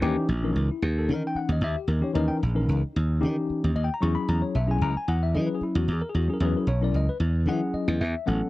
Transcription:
0.02 D#2 E3 C#4 D#4 G4
0.29 A#1
0.43 E3 C#4 D#4 A#4
0.56 C#2
0.70 E4, muted slap bass stroke
0.82 D#2 D#4 G4
0.98 A4
1.09 D#3 E3 C#4 D#4 A#4
1.14 A#4
1.27 G5
1.35 F#5, muted slap bass stroke
1.49 D#2 D#5
1.61 D#2 E5
1.76 G4
1.88 D#2 D#4 A#4
2.00 E3 C#4 D#4 G4 C#5
2.14 D#2 E3 C#4 D#4 A#4 D#5
2.28 G5
2.43 A#1
2.55 E3 C#4 D#4 A#4
2.69 C#2
2.83 muted slap bass stroke
2.93 D#2 D#4 G4
3.20 D#3 E3 C#4 D#4 G4
3.50 muted slap bass stroke
3.64 D#2
3.76 D#2 D#5
3.84 G5
3.94 A#5
4.01 E2 F#3 C#4 E4 G#4 C#6
4.15 B5
4.28 E2 A#5
4.42 C#5
4.55 B1 E5
4.67 F#3 C#4 E4 G#4
4.71 G#5
4.81 C#2 A#5
4.96 G#5, muted slap bass stroke
5.08 E2 E4 F#4 F#5
5.23 E5
5.34 E3 F#3 C#4 E4 G#4 D#5
5.47 B4
5.55 G#4
5.61 E4, muted slap bass stroke
5.75 E2 F#4
5.88 E2
5.93 G#4
6.02 A#4
6.09 G#4
6.14 E2 E4 F#4 G#4
6.28 F#3 C#4 E4 G#4
6.34 A#4
6.40 E2 F#3 C#4 E4 G#4
6.45 B4
6.57 A#4
6.67 B1 C#5
6.81 F#3 C#4 E4 A#4 D5
6.94 C#2 D#5
7.08 B4, muted slap bass stroke
7.20 E2 E4 G#4
7.46 E3 F#3 C#4 E4 G#4 F#5
7.74 D#5, muted slap bass stroke
7.88 E2
8.01 E2 E5
8.26 A1 F#3 B3 C#4 A4 F#5

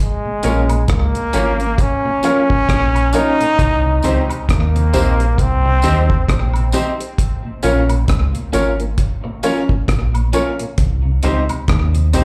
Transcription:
0.01 G#3
0.25 A#2
0.43 A#1 F3 A#3 C#4 F4 A#4 C#5, closed hi-hat, tambourine
0.69 A#2, closed hi-hat, high woodblock
0.88 C#2 A#3, kick, cross-stick, closed hi-hat
1.15 A#2, closed hi-hat
1.33 G#1 F3 A#3 C#4 F4 A#4 C#5, closed hi-hat, tambourine
1.60 A#3 C#4, closed hi-hat
1.78 C#4, kick, closed hi-hat
2.05 A#2, muted clean electric guitar stroke
2.23 F3 A#3 C#4 F4 A#4 C#5, closed hi-hat, tambourine
2.50 A#2, kick
2.69 A#1, kick, cross-stick, closed hi-hat
2.95 A#2, closed hi-hat, high woodblock
3.13 F3 A#3 C#4 D#4 F4 A#4 C#5, closed hi-hat, tambourine
3.40 A#2 A#4 C#5, muted clean electric guitar stroke, closed hi-hat
3.59 C2, kick, closed hi-hat
3.85 C3
4.03 C#2 D#3 G3 C4 D#4 G4 C5, closed hi-hat, tambourine
4.30 C3, closed hi-hat, high woodblock
4.49 D#2 A#3, kick, cross-stick, closed hi-hat
4.75 C3, closed hi-hat
4.93 A#1 D#3 G3 C4 D#4 G4 C5, closed hi-hat, tambourine
5.20 G3 C4, closed hi-hat
5.38 C2 C4, kick, closed hi-hat
5.65 C3, muted clean electric guitar stroke
5.82 D#2 D#3 G3 C4 D#4 G4 C5, closed hi-hat, tambourine
6.10 C3, kick
6.29 A#1, kick, cross-stick, closed hi-hat
6.53 C3, closed hi-hat, high woodblock
6.72 D#3 G3 C4 D#4 G4 C5, closed hi-hat, tambourine
7.00 G4 C5, closed hi-hat
7.18 kick, closed hi-hat
7.45 A#2
7.63 A#1 F3 A#3 C#4 F4 A#4 C#5, closed hi-hat, tambourine
7.89 A#2, closed hi-hat, high woodblock
8.08 C#2, kick, cross-stick, closed hi-hat
8.35 A#2, closed hi-hat
8.53 G#1 F3 A#3 C#4 F4 A#4 C#5, closed hi-hat, tambourine
8.80 A#3 C#4, closed hi-hat
8.98 kick, closed hi-hat
9.24 A#2, muted clean electric guitar stroke
9.43 F3 A#3 C#4 F4 A#4 C#5, closed hi-hat, tambourine
9.69 A#2, kick
9.88 A#1, kick, cross-stick, closed hi-hat
10.14 A#2, closed hi-hat, high woodblock
10.33 F3 A#3 C#4 F4 A#4 C#5, closed hi-hat, tambourine
10.59 A#2 A#4 C#5, muted clean electric guitar stroke, closed hi-hat
10.78 C2, kick, closed hi-hat
11.05 C3
11.23 C#2 D#3 G3 C4 D#4 G4 C5, closed hi-hat, tambourine
11.49 C3, closed hi-hat, high woodblock
11.68 D#2, kick, cross-stick, closed hi-hat
11.95 C3, closed hi-hat
12.13 A#1 D#3 G3 C4 D#4 G4 C5, closed hi-hat, tambourine

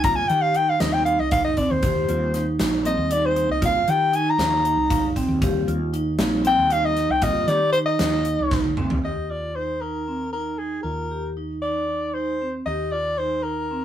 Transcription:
Already playing: C2
0.03 G3 A#3 C4 F4 A#5, kick, closed hi-hat
0.16 G#5
0.28 D#3 G4 G5, closed hi-hat
0.42 F5
0.54 D#4 G5, closed hi-hat
0.70 F5
0.80 D#2 G3 A#3 C4 D#4 F4 D#5, snare, closed hi-hat
0.93 G5
1.05 D#4 F5, closed hi-hat
1.20 C2 D#5
1.31 D#4 F5, kick, closed hi-hat
1.45 D#5
1.57 C4 D5, kick, closed hi-hat
1.71 D#2 C5
1.83 G4, kick, closed hi-hat
2.08 D#2 G3 A#3 C4 F4, closed hi-hat
2.34 D#4, snare, closed hi-hat
2.59 A#1 D#4, snare, closed hi-hat
2.85 G3 A#3 C4 F4 D#5, closed hi-hat
2.97 D#2
3.11 D#4 D5, closed hi-hat
3.26 C5
3.36 D#4, closed hi-hat
3.49 C2 D#5
3.61 G3 A#3 C4 F4, kick, closed hi-hat
3.65 F5
3.87 D#3 G4 G5, closed hi-hat
4.13 D#4 G#5, closed hi-hat
4.30 A#5
4.38 D#2 D#4, snare, closed hi-hat
4.65 D#4, closed hi-hat
4.77 C2
4.90 D#4 F5, kick, closed hi-hat
5.16 C4 G5, kick, closed hi-hat
5.28 D#2
5.42 G3 A#3 C4 F4 G4, kick, closed hi-hat
5.68 D#2 F4, closed hi-hat
5.93 D#4, closed hi-hat
6.19 A#1 G3 A#3 C4 D#4 F4, snare, closed hi-hat
6.45 C4 G5, closed hi-hat
6.58 D#2
6.70 D#4 F5, closed hi-hat
6.85 D#5
6.96 D#4, snare, closed hi-hat
7.09 C2 G5
7.22 G3 A#3 C4 F4 D#5, kick, closed hi-hat
7.47 D#3 G4 D5, snare, closed hi-hat
7.73 D#4 C5, closed hi-hat
7.86 D#5
7.99 D#2 D#4, snare, closed hi-hat
8.25 D#4, closed hi-hat
8.39 C2
8.51 D#4, kick, snare
8.64 high tom
8.77 C4, mid tom
8.90 D#2, floor tom
9.03 D#2 G4 D#5
9.30 F4 D5
9.55 D#4 C5
9.81 D#4 A#4
10.08 C4
10.33 D#4 A#4
10.58 D#4 G#4
10.83 D#2 F4 A#4
11.11 G4
11.37 D#4
11.62 D#4 D5
11.89 D#4
12.14 D#4 C5
12.41 C4
12.66 D#2 G4 D#5
12.92 F4 D5
13.18 D#4 C5
13.43 D#4 A#4
13.71 C4

